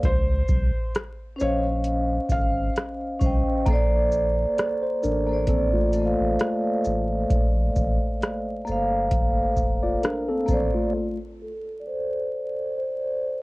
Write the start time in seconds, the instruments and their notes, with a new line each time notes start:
0.03 sub bass C#2, felt piano C5, kick, closed hi-hat
0.48 sub bass C2, kick, shaker
0.95 cross-stick, closed hi-hat
1.36 vibraphone C#4 C5, shaker
1.41 sub bass A#1, felt piano C#5, vibraphone D#5 F5
1.84 closed hi-hat
2.29 sub bass G#1, felt piano F5, kick, closed hi-hat, shaker
2.76 cross-stick, closed hi-hat
3.19 sub bass C2, vibraphone C#4 C5, kick, shaker
3.24 vibraphone D#5 G5
3.66 sub bass A#1, vibraphone A#3 A4, kick, closed hi-hat
3.71 vibraphone C5 D5
4.12 shaker
4.58 cross-stick, closed hi-hat
4.83 tine electric piano C5
5.03 sub bass A1, tine electric piano D4 A#4, shaker
5.27 vibraphone A#3 A4
5.31 vibraphone C5 D5
5.47 tine electric piano C4 A4, kick, closed hi-hat
5.73 tine electric piano A3 F4
5.92 vibraphone A3 A4, closed hi-hat, shaker
5.97 vibraphone C5 D#5
6.06 vibraphone F5
6.20 sub bass A1
6.40 cross-stick, closed hi-hat
6.85 sub bass A1, shaker
7.30 sub bass A#1, kick, closed hi-hat
7.76 sub bass A1, kick, shaker
8.22 cross-stick, closed hi-hat
8.65 sub bass G1, vibraphone A#3 A4, shaker
8.69 vibraphone C5 F5
9.11 kick, closed hi-hat
9.56 sub bass F1, kick, shaker
9.83 tine electric piano F4 D5
10.03 tine electric piano D4 A#4, cross-stick, closed hi-hat
10.28 tine electric piano C4 A4
10.46 sub bass A1, vibraphone A#3 A4, kick, shaker
10.50 vibraphone C5 D5
10.74 tine electric piano A3 F4
11.42 vibraphone A4
11.80 vibraphone D5
11.87 vibraphone C5
12.78 vibraphone C5